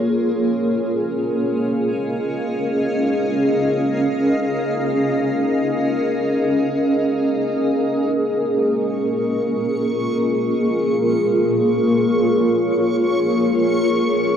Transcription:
0, 0, Header, 1, 3, 480
1, 0, Start_track
1, 0, Key_signature, -5, "minor"
1, 0, Tempo, 500000
1, 13792, End_track
2, 0, Start_track
2, 0, Title_t, "Synth texture"
2, 0, Program_c, 0, 99
2, 7384, Note_on_c, 0, 85, 67
2, 13792, Note_off_c, 0, 85, 0
2, 13792, End_track
3, 0, Start_track
3, 0, Title_t, "Ambient pad"
3, 0, Program_c, 1, 92
3, 0, Note_on_c, 1, 58, 76
3, 0, Note_on_c, 1, 65, 77
3, 0, Note_on_c, 1, 68, 81
3, 0, Note_on_c, 1, 70, 57
3, 65, Note_on_c, 1, 61, 63
3, 521, Note_on_c, 1, 77, 72
3, 959, Note_on_c, 1, 75, 67
3, 2581, Note_off_c, 1, 58, 0
3, 2990, Note_off_c, 1, 65, 0
3, 7376, Note_on_c, 1, 58, 69
3, 8063, Note_on_c, 1, 65, 79
3, 8583, Note_off_c, 1, 77, 0
3, 9679, Note_off_c, 1, 75, 0
3, 10302, Note_off_c, 1, 61, 0
3, 10665, Note_on_c, 1, 73, 73
3, 13792, Note_off_c, 1, 58, 0
3, 13792, Note_off_c, 1, 65, 0
3, 13792, Note_off_c, 1, 68, 0
3, 13792, Note_off_c, 1, 70, 0
3, 13792, Note_off_c, 1, 73, 0
3, 13792, End_track
0, 0, End_of_file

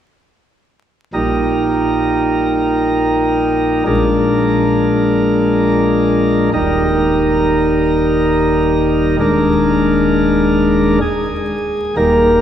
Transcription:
0, 0, Header, 1, 2, 480
1, 0, Start_track
1, 0, Key_signature, -3, "major"
1, 0, Tempo, 916031
1, 595, Time_signature, 3, 2, 24, 8
1, 2030, Tempo, 890208
1, 5390, Tempo, 931677
1, 6579, End_track
2, 0, Start_track
2, 0, Title_t, "Pipe organ"
2, 0, Program_c, 0, 19
2, 594, Note_on_c, 0, 46, 63
2, 595, Note_on_c, 0, 34, 65
2, 595, Note_on_c, 0, 63, 56
2, 596, Note_on_c, 0, 55, 52
2, 596, Note_on_c, 0, 70, 53
2, 2008, Note_off_c, 0, 46, 0
2, 2009, Note_off_c, 0, 34, 0
2, 2009, Note_off_c, 0, 55, 0
2, 2009, Note_off_c, 0, 63, 0
2, 2009, Note_off_c, 0, 70, 0
2, 2025, Note_on_c, 0, 34, 66
2, 2025, Note_on_c, 0, 62, 54
2, 2026, Note_on_c, 0, 46, 65
2, 2026, Note_on_c, 0, 56, 53
2, 2026, Note_on_c, 0, 70, 55
2, 3443, Note_off_c, 0, 34, 0
2, 3443, Note_off_c, 0, 56, 0
2, 3443, Note_off_c, 0, 62, 0
2, 3443, Note_off_c, 0, 70, 0
2, 3444, Note_off_c, 0, 46, 0
2, 3463, Note_on_c, 0, 27, 72
2, 3463, Note_on_c, 0, 55, 59
2, 3464, Note_on_c, 0, 63, 62
2, 3464, Note_on_c, 0, 70, 58
2, 3465, Note_on_c, 0, 39, 70
2, 4881, Note_off_c, 0, 27, 0
2, 4881, Note_off_c, 0, 55, 0
2, 4882, Note_off_c, 0, 39, 0
2, 4882, Note_off_c, 0, 63, 0
2, 4882, Note_off_c, 0, 70, 0
2, 4900, Note_on_c, 0, 27, 75
2, 4900, Note_on_c, 0, 39, 70
2, 4900, Note_on_c, 0, 56, 59
2, 4901, Note_on_c, 0, 62, 62
2, 4902, Note_on_c, 0, 70, 60
2, 5843, Note_off_c, 0, 27, 0
2, 5843, Note_off_c, 0, 39, 0
2, 5843, Note_off_c, 0, 56, 0
2, 5843, Note_off_c, 0, 62, 0
2, 5844, Note_off_c, 0, 70, 0
2, 5857, Note_on_c, 0, 68, 91
2, 6335, Note_off_c, 0, 68, 0
2, 6349, Note_on_c, 0, 27, 58
2, 6349, Note_on_c, 0, 39, 60
2, 6350, Note_on_c, 0, 55, 47
2, 6350, Note_on_c, 0, 58, 48
2, 6350, Note_on_c, 0, 70, 93
2, 6579, Note_off_c, 0, 27, 0
2, 6579, Note_off_c, 0, 39, 0
2, 6579, Note_off_c, 0, 55, 0
2, 6579, Note_off_c, 0, 58, 0
2, 6579, Note_off_c, 0, 70, 0
2, 6579, End_track
0, 0, End_of_file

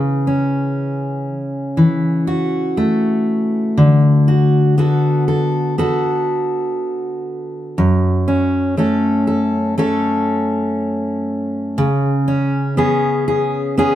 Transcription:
0, 0, Header, 1, 2, 480
1, 0, Start_track
1, 0, Key_signature, 3, "minor"
1, 0, Tempo, 1000000
1, 1812, Time_signature, 4, 2, 24, 8
1, 6696, End_track
2, 0, Start_track
2, 0, Title_t, "Steel-string acoustic guitar"
2, 0, Program_c, 0, 25
2, 0, Note_on_c, 0, 49, 67
2, 0, Note_on_c, 0, 52, 53
2, 130, Note_on_c, 0, 61, 47
2, 611, Note_off_c, 0, 52, 0
2, 851, Note_on_c, 0, 52, 54
2, 1091, Note_on_c, 0, 66, 53
2, 1331, Note_on_c, 0, 57, 50
2, 1810, Note_off_c, 0, 49, 0
2, 1812, Note_on_c, 0, 50, 64
2, 1859, Note_off_c, 0, 61, 0
2, 1860, Note_off_c, 0, 52, 0
2, 2053, Note_off_c, 0, 66, 0
2, 2053, Note_on_c, 0, 66, 48
2, 2291, Note_off_c, 0, 57, 0
2, 2293, Note_on_c, 0, 59, 48
2, 2295, Note_off_c, 0, 66, 0
2, 2297, Note_on_c, 0, 66, 46
2, 2300, Note_on_c, 0, 69, 51
2, 2532, Note_off_c, 0, 69, 0
2, 2534, Note_on_c, 0, 69, 52
2, 2769, Note_off_c, 0, 59, 0
2, 2775, Note_off_c, 0, 66, 0
2, 2775, Note_on_c, 0, 59, 49
2, 2777, Note_on_c, 0, 66, 50
2, 2779, Note_off_c, 0, 69, 0
2, 2780, Note_on_c, 0, 69, 58
2, 3732, Note_off_c, 0, 50, 0
2, 3734, Note_on_c, 0, 42, 67
2, 3782, Note_off_c, 0, 59, 0
2, 3971, Note_off_c, 0, 66, 0
2, 3973, Note_on_c, 0, 61, 53
2, 4212, Note_on_c, 0, 57, 45
2, 4213, Note_off_c, 0, 61, 0
2, 4215, Note_on_c, 0, 61, 48
2, 4216, Note_off_c, 0, 69, 0
2, 4218, Note_on_c, 0, 69, 52
2, 4445, Note_off_c, 0, 69, 0
2, 4451, Note_on_c, 0, 69, 58
2, 4687, Note_off_c, 0, 57, 0
2, 4692, Note_off_c, 0, 69, 0
2, 4693, Note_on_c, 0, 57, 57
2, 4694, Note_off_c, 0, 61, 0
2, 4696, Note_on_c, 0, 61, 56
2, 4699, Note_on_c, 0, 69, 63
2, 5653, Note_off_c, 0, 42, 0
2, 5654, Note_on_c, 0, 49, 74
2, 5701, Note_off_c, 0, 57, 0
2, 5704, Note_off_c, 0, 69, 0
2, 5891, Note_off_c, 0, 61, 0
2, 5893, Note_on_c, 0, 61, 55
2, 6131, Note_on_c, 0, 59, 53
2, 6132, Note_off_c, 0, 61, 0
2, 6134, Note_on_c, 0, 61, 54
2, 6136, Note_on_c, 0, 68, 55
2, 6367, Note_off_c, 0, 68, 0
2, 6373, Note_on_c, 0, 68, 56
2, 6606, Note_off_c, 0, 59, 0
2, 6612, Note_on_c, 0, 59, 55
2, 6613, Note_off_c, 0, 68, 0
2, 6614, Note_off_c, 0, 61, 0
2, 6616, Note_on_c, 0, 61, 58
2, 6618, Note_on_c, 0, 68, 67
2, 6696, Note_off_c, 0, 49, 0
2, 6696, Note_off_c, 0, 59, 0
2, 6696, Note_off_c, 0, 61, 0
2, 6696, Note_off_c, 0, 68, 0
2, 6696, End_track
0, 0, End_of_file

